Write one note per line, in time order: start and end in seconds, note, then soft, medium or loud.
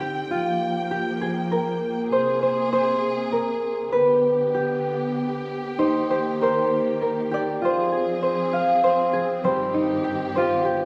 0.00 0.27 D3 medium
0.00 0.27 C4 medium
0.00 0.84 D#4 medium
0.00 0.91 G4 medium
0.00 0.42 C5 medium
0.00 2.06 G5 medium
0.30 2.09 F3 medium
0.30 3.89 A#3 medium
0.30 2.83 F4 medium
0.91 1.27 G4 medium
1.21 3.49 G#4 medium
1.51 3.32 A#4 medium
2.10 3.91 C3 medium
2.10 3.91 G#4 medium
2.10 2.42 C5 medium
2.42 2.72 C5 medium
2.73 3.98 C5 medium
3.32 3.98 A#4 medium
3.92 5.77 D3 medium
3.92 5.77 B3 medium
3.92 7.59 G4 medium
3.92 5.85 B4 medium
4.54 6.10 G4 medium
5.79 7.61 D#3 medium
5.79 7.60 A#3 medium
5.79 7.40 D#4 medium
5.79 6.10 C5 medium
6.10 7.31 G4 medium
6.10 6.18 C5 medium
6.41 7.01 A#4 medium
6.41 7.64 C5 medium
7.02 9.14 A#4 medium
7.31 7.98 G4 medium
7.31 9.19 D5 medium
7.62 9.43 F3 medium
7.62 10.64 C4 medium
7.62 10.14 F4 medium
7.62 9.44 G#4 medium
7.62 8.22 C5 medium
7.92 9.13 G#4 medium
8.23 8.83 C5 medium
8.53 10.19 F5 medium
8.84 9.44 C5 medium
9.13 9.50 G#4 medium
9.44 10.65 G2 medium
9.44 10.65 D#3 medium
9.44 10.71 G3 medium
9.44 10.85 G4 medium
9.44 10.35 C5 medium
9.74 10.85 D#4 medium
10.04 10.65 G4 medium
10.36 10.85 F4 medium
10.36 10.85 C5 medium
10.65 10.85 D3 medium
10.65 10.85 B3 medium
10.65 10.85 G4 medium